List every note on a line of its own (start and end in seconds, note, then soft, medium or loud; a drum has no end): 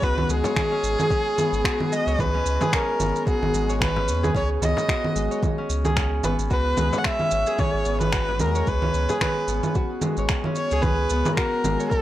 0.00 0.25 C#2 loud
0.00 0.28 G#3 medium
0.00 1.37 B3 medium
0.00 0.71 C#4 loud
0.00 0.20 E4 medium
0.00 1.64 F#4 medium
0.00 0.98 G#4 medium
0.00 0.32 B4 loud
0.00 0.44 C#5 medium
0.00 kick medium
0.00 shaker soft
0.18 low conga medium
0.29 0.42 C#2 loud
0.29 1.91 G#3 medium
0.29 1.94 G#4 loud
0.29 shaker medium
0.44 2.07 C#5 medium
0.44 frame drum medium
0.44 shaker soft
0.56 finger snap loud
0.56 kick loud
0.56 low conga medium
0.56 shaker soft
0.72 1.10 C#4 loud
0.83 0.96 G#1 medium
0.83 shaker medium
0.98 2.61 G#4 medium
0.98 low conga medium
0.98 shaker soft
1.10 2.34 C#4 loud
1.10 kick loud
1.10 shaker soft
1.38 2.99 B3 medium
1.38 low conga medium
1.38 shaker medium
1.52 1.62 G#1 loud
1.52 shaker soft
1.64 3.26 F#4 medium
1.64 finger snap loud
1.64 kick loud
1.64 shaker soft
1.80 low conga medium
1.92 3.53 G#3 medium
1.92 2.21 D#5 loud
1.92 shaker medium
2.07 2.16 C#2 loud
2.07 3.69 C#5 medium
2.07 shaker soft
2.19 2.42 C#2 loud
2.19 2.76 B4 loud
2.19 kick loud
2.19 low conga medium
2.19 shaker soft
2.34 2.72 C#4 loud
2.45 2.58 C#2 loud
2.45 shaker medium
2.61 4.23 G#4 loud
2.61 frame drum medium
2.61 low conga medium
2.61 shaker soft
2.73 3.96 C#4 medium
2.73 3.27 A#4 medium
2.73 finger snap loud
2.73 kick loud
2.73 shaker soft
3.00 3.12 G#1 medium
3.00 4.61 B3 medium
3.00 low conga medium
3.00 shaker medium
3.16 shaker soft
3.27 4.88 F#4 medium
3.27 3.78 G#4 medium
3.27 kick loud
3.27 shaker soft
3.42 3.51 G#1 medium
3.42 low conga medium
3.53 4.08 G#1 medium
3.53 5.14 G#3 medium
3.53 shaker medium
3.69 5.31 C#5 medium
3.69 shaker soft
3.81 4.32 B4 medium
3.81 finger snap loud
3.81 kick loud
3.81 low conga medium
3.81 shaker soft
3.96 4.34 C#4 medium
3.96 frame drum medium
4.07 4.30 E2 medium
4.07 shaker medium
4.23 5.84 G#4 loud
4.23 low conga medium
4.23 shaker soft
4.34 4.58 C#2 loud
4.34 5.58 C#4 loud
4.34 4.48 C#5 medium
4.34 kick loud
4.34 shaker soft
4.61 4.74 C#2 loud
4.61 6.23 B3 medium
4.61 5.39 D#5 medium
4.61 low conga medium
4.61 shaker medium
4.77 frame drum medium
4.77 shaker soft
4.88 6.50 F#4 medium
4.88 finger snap loud
4.88 kick loud
4.88 shaker soft
5.04 low conga medium
5.15 5.28 G#1 medium
5.15 6.56 G#3 medium
5.15 shaker medium
5.31 6.92 C#5 medium
5.31 shaker soft
5.43 kick loud
5.43 low conga medium
5.43 shaker soft
5.58 5.96 C#4 medium
5.69 6.20 C#2 medium
5.69 shaker medium
5.85 7.47 G#4 loud
5.85 low conga medium
5.85 shaker soft
5.96 7.19 C#4 loud
5.96 finger snap medium
5.96 kick loud
5.96 shaker soft
6.23 6.36 G#1 loud
6.23 7.85 B3 medium
6.23 6.36 B4 medium
6.23 low conga medium
6.23 shaker medium
6.38 6.49 G#1 medium
6.38 shaker soft
6.51 6.74 C#2 loud
6.51 8.12 F#4 medium
6.51 7.00 B4 loud
6.51 kick medium
6.51 shaker soft
6.77 6.90 C#2 loud
6.77 8.38 G#3 medium
6.77 low conga medium
6.77 shaker medium
6.92 8.55 C#5 medium
6.92 frame drum medium
6.92 shaker soft
6.98 7.07 F#5 medium
7.04 7.61 E5 loud
7.04 finger snap medium
7.04 kick medium
7.04 shaker soft
7.19 7.59 C#4 loud
7.19 low conga medium
7.31 7.45 G#1 medium
7.31 shaker medium
7.47 9.09 G#4 medium
7.47 shaker soft
7.59 8.82 C#4 loud
7.59 8.01 C#5 medium
7.59 kick loud
7.59 low conga medium
7.59 shaker soft
7.74 7.84 G#1 medium
7.85 8.41 G#1 loud
7.85 9.48 B3 medium
7.85 shaker medium
8.01 8.42 B4 loud
8.01 low conga medium
8.01 shaker soft
8.13 9.75 F#4 medium
8.13 finger snap loud
8.13 kick loud
8.13 shaker soft
8.29 frame drum medium
8.40 8.63 E2 medium
8.40 10.02 G#3 medium
8.40 8.69 A#4 medium
8.40 low conga medium
8.40 shaker medium
8.55 10.18 C#5 medium
8.55 shaker soft
8.67 8.90 C#2 loud
8.67 9.21 B4 medium
8.67 kick medium
8.67 shaker soft
8.82 9.21 C#4 medium
8.82 low conga medium
8.94 9.07 C#2 loud
8.94 shaker medium
9.09 10.72 G#4 loud
9.09 frame drum medium
9.09 shaker soft
9.21 10.45 C#4 medium
9.21 9.72 B4 medium
9.21 finger snap medium
9.21 kick medium
9.21 low conga medium
9.21 shaker soft
9.47 9.61 G#1 medium
9.47 11.11 B3 medium
9.47 shaker medium
9.63 low conga medium
9.63 shaker soft
9.75 11.37 F#4 medium
9.75 kick loud
9.75 shaker soft
10.02 11.63 G#3 medium
10.02 low conga medium
10.02 shaker medium
10.17 10.27 G#1 loud
10.17 11.79 C#5 medium
10.17 shaker soft
10.29 finger snap medium
10.29 kick loud
10.29 shaker soft
10.44 10.84 C#4 loud
10.44 low conga medium
10.55 10.84 C#5 medium
10.55 shaker medium
10.71 10.81 C#2 loud
10.71 12.02 G#4 loud
10.71 shaker soft
10.82 11.06 C#2 loud
10.82 12.02 C#4 loud
10.82 11.35 B4 medium
10.82 kick medium
10.82 low conga medium
10.82 shaker soft
11.10 11.23 C#2 loud
11.10 12.02 B3 medium
11.10 shaker medium
11.25 low conga medium
11.25 frame drum medium
11.25 shaker soft
11.35 12.02 F#4 medium
11.35 11.87 A#4 medium
11.35 finger snap loud
11.35 kick loud
11.35 shaker soft
11.64 11.77 G#1 medium
11.64 12.02 G#3 medium
11.64 low conga medium
11.64 shaker medium
11.80 12.02 C#5 medium
11.80 shaker soft
11.90 12.02 G#4 medium
11.90 kick loud
11.90 shaker soft